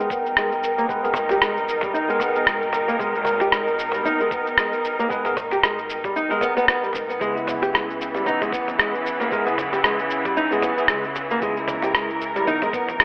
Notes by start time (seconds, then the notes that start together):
Already playing: B2 G3 B3 D#4 A#4 G5
0.00 cabasa
0.10 B3, kick, cabasa
0.26 cabasa
0.37 G#3, cross-stick, cabasa
0.52 cabasa
0.63 cabasa
0.78 A#3, cabasa
0.88 G#3 B3 G#4 B4, kick, cabasa
1.03 G#1 B3 G#4 A#4, cajon slap, cabasa
1.14 cajon bass, cabasa
1.29 G4, cajon slap, cabasa
1.41 G#3, cross-stick, cabasa
1.57 cabasa
1.69 cabasa
1.81 G3, kick, cajon slap, cabasa
1.94 D#4, cabasa
2.08 G#3 B3 G#4 A#4, cabasa
2.20 B3, cajon bass, cabasa
2.35 B3 G#4 A#4, cabasa
2.46 G#1 G#3, cross-stick, cabasa
2.62 cabasa
2.73 cajon slap, cabasa
2.88 A#3, cabasa
2.99 G#1 G#3 B3 G#4 A#4, kick, cabasa
3.15 G#3 A#4, cabasa
3.25 cajon bass, cabasa
3.40 G4, cajon slap, cabasa
3.52 G#3, cross-stick, cabasa
3.67 cabasa
3.79 cabasa
3.92 G3, cajon slap, cabasa
4.03 D#2 B3 D#4, cabasa
4.08 A#4
4.20 G#3, cabasa
4.31 B3, kick, cabasa
4.47 cabasa
4.58 G#3, cross-stick, cabasa
4.73 cabasa
4.85 cabasa
4.99 A#3, cabasa
5.09 G#3 B3 G#4 B4, kick, cabasa
5.24 G#1 B3 G#4 A#4, cajon slap, cabasa
5.37 cajon bass, cabasa
5.51 G4, cajon slap, cabasa
5.63 G#3, cross-stick, cabasa
5.79 cabasa
5.90 cabasa
6.04 G3, kick, cajon slap, cabasa
6.16 D#4, cabasa
6.29 G#3 B3 G#4 A#4, cabasa
6.41 B3, cajon bass, cabasa
6.57 B3, cabasa
6.68 B3, cross-stick, cabasa
6.83 G3, cabasa
6.93 G#2, cajon slap, cabasa
7.09 B3, cabasa
7.20 C#2 C#3 E3 G#3 B3 E4 G#4, kick, cabasa
7.33 B3 E4
7.37 G#3, cabasa
7.47 cajon bass, mid tom, cabasa
7.62 G4, cajon slap, cabasa
7.73 G#3, cross-stick, cabasa
7.90 cabasa
8.01 cabasa
8.14 G3, cajon slap, cabasa
8.24 B1 E3 B3 D#4, cabasa
8.41 G#3, mid tom, cabasa
8.52 B3, kick, cabasa
8.68 mid tom, cabasa
8.79 G#3, cross-stick, cabasa
8.95 cabasa
9.06 cabasa
9.20 A#3, cabasa
9.30 G#3 B3 E4 A#4, kick, cabasa
9.46 C#2 B3 E4 G#4, cajon slap, cabasa
9.58 cajon bass, mid tom, cabasa
9.73 G4, cajon slap, cabasa
9.84 G#3, cross-stick, cabasa
9.99 cabasa
10.11 cabasa
10.25 G3, kick, cajon slap, cabasa
10.37 D#4, cabasa
10.51 G#3 B3 E4 G#4, cabasa
10.62 B3, cajon bass, mid tom, cabasa
10.78 B3 E4 G#4, cabasa
10.88 C#2 G#3, cross-stick, cabasa
11.04 cabasa
11.15 cajon slap, cabasa
11.31 A#3, cabasa
11.41 C#2 G#3 B3 E4 G#4 A#4, kick, cabasa
11.57 G#3 E4, cabasa
11.68 cajon bass, mid tom, cabasa
11.82 G4, cajon slap, cabasa
11.95 G#3, cross-stick, cabasa
12.10 cabasa
12.21 cabasa
12.36 G3, cajon slap, cabasa
12.46 B1 E3 B3 D#4, cabasa
12.62 G#3, mid tom, cabasa
12.73 B3, kick, cabasa
12.89 mid tom, cabasa
13.00 G#3, cross-stick, cabasa